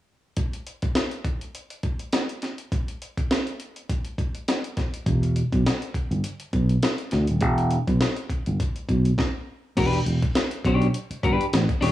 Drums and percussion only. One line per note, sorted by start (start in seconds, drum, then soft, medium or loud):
0.36 kick loud
0.36 closed hi-hat medium
0.53 closed hi-hat medium
0.67 closed hi-hat medium
0.82 kick medium
0.82 closed hi-hat medium
0.95 snare loud
0.95 closed hi-hat medium
1.11 closed hi-hat soft
1.25 kick medium
1.25 closed hi-hat medium
1.41 closed hi-hat medium
1.55 closed hi-hat medium
1.70 closed hi-hat medium
1.83 kick medium
1.83 closed hi-hat medium
1.99 closed hi-hat soft
2.13 snare loud
2.13 closed hi-hat medium
2.29 closed hi-hat soft
2.42 snare soft
2.42 closed hi-hat medium
2.58 closed hi-hat medium
2.72 kick loud
2.72 closed hi-hat medium
2.88 closed hi-hat medium
3.02 closed hi-hat medium
3.18 kick medium
3.18 closed hi-hat medium
3.31 snare loud
3.31 closed hi-hat medium
3.47 closed hi-hat soft
3.60 closed hi-hat medium
3.76 closed hi-hat soft
3.90 kick loud
3.90 closed hi-hat medium
4.05 closed hi-hat medium
4.18 kick medium
4.18 closed hi-hat medium
4.35 closed hi-hat soft
4.48 snare loud
4.48 closed hi-hat medium
4.64 closed hi-hat soft
4.77 kick medium
4.77 snare soft
4.77 closed hi-hat medium
4.94 closed hi-hat medium
5.06 kick loud
5.06 closed hi-hat medium
5.23 closed hi-hat medium
5.36 closed hi-hat medium
5.52 kick loud
5.52 closed hi-hat medium
5.66 snare loud
5.66 closed hi-hat medium
5.82 closed hi-hat soft
5.94 kick medium
5.94 closed hi-hat medium
6.11 closed hi-hat soft
6.24 closed hi-hat medium
6.40 closed hi-hat medium
6.53 kick medium
6.53 closed hi-hat medium
6.69 closed hi-hat soft
6.83 snare loud
6.83 closed hi-hat medium
6.98 closed hi-hat soft
7.11 snare soft
7.11 closed hi-hat medium
7.27 closed hi-hat medium
7.41 kick loud
7.41 closed hi-hat medium
7.58 closed hi-hat medium
7.71 closed hi-hat medium
7.88 kick medium
7.88 closed hi-hat medium
8.01 snare loud
8.01 closed hi-hat loud
8.16 closed hi-hat soft
8.30 kick medium
8.30 closed hi-hat medium
8.46 closed hi-hat soft
8.60 kick loud
8.60 closed hi-hat medium
8.76 closed hi-hat soft
8.89 kick medium
8.89 closed hi-hat medium
9.05 closed hi-hat medium
9.18 kick loud
9.18 snare medium
9.77 kick loud
9.77 closed hi-hat medium
9.77 crash loud
9.93 closed hi-hat medium
10.06 closed hi-hat medium
10.22 kick medium
10.22 closed hi-hat medium
10.35 snare loud
10.35 closed hi-hat loud
10.51 closed hi-hat medium
10.64 kick medium
10.64 closed hi-hat medium
10.82 closed hi-hat soft
10.94 closed hi-hat medium
11.11 closed hi-hat soft
11.23 kick loud
11.23 closed hi-hat medium
11.41 closed hi-hat medium
11.53 snare loud
11.53 closed hi-hat medium
11.69 kick medium
11.69 closed hi-hat medium
11.82 snare soft
11.82 open hi-hat medium